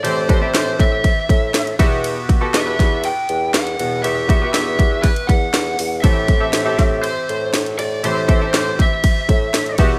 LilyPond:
<<
  \new Staff \with { instrumentName = "Lead electric guitar" } { \time 4/4 \key a \dorian \tempo 4 = 120 c''4 c''8 e''2 r8 | r4 e''4 g''4 fis''4 | e''4 e''4 b'8 fis''4. | e''2 c''4 r8 d''8 |
c''4 c''8 e''2 r8 | }
  \new Staff \with { instrumentName = "Grand piano" } { \time 4/4 \key a \dorian <c' g' a' d''>8 <c' g' a' b'>16 <c' g' a' e''>4. r4 r16 <b fis' g' e''>8~ | <b fis' g' e''>8 r16 <b fis' g' a'>8 <b e' g' b'>4. r4 r16 | <b fis' g' e''>8 <b fis' g' e''>16 <b fis' g' b'>4. r4. r16 | <c' g' a' e''>8 r16 <c' g' a' e''>8 <c' g' a' e''>4. r4 r16 |
<c' g' a' e''>8 <c' g' a' e''>16 <c' g' a' e''>4. r4 r16 <b fis' g' e''>8 | }
  \new Staff \with { instrumentName = "Grand piano" } { \clef bass \time 4/4 \key a \dorian <a, e>4. r2 b,8~ | b,4 r2 r8 b,8~ | b,4 r2. | <a, e>4. r2 r8 |
<a, e>4. r2 b,8 | }
  \new Staff \with { instrumentName = "Bassoon" } { \clef bass \time 4/4 \key a \dorian a,4 a,8 a,8. r16 a,8 a,8 e,8~ | e,8 r8 e,8 e,8. r16 e,8 e,8 e,8 | e,4 e,8 e,8. r16 e,8 e,8 e,8 | a,4 a,8 a,8. r16 a,8 a,8 a,8 |
a,4 a,8 r4 a,8 a,8 e,8 | }
  \new DrumStaff \with { instrumentName = "Drums" } \drummode { \time 4/4 cymr8 <bd cymr>8 <cymr sn>8 <bd cymr>8 <bd cymr>8 <bd cymr>8 <cymr sn>16 cymr16 <bd cymr>8 | cymr8 <bd cymr>8 <cymr sn>8 <bd cymr sn>8 cymr8 cymr8 <cymr sn>16 cymr16 cymr8 | cymr8 <bd cymr>8 <cymr sn>8 <bd cymr>8 <bd cymr>16 cymr16 <bd cymr>8 <cymr sn>8 <hho cymr>8 | <bd cymr>8 <bd cymr>8 <cymr sn>8 <bd cymr sn>8 cymr8 cymr8 <cymr sn>16 cymr16 cymr8 |
cymr8 <bd cymr>8 <cymr sn>8 <bd cymr>8 <bd cymr>8 <bd cymr>8 <cymr sn>16 cymr16 <bd cymr>8 | }
>>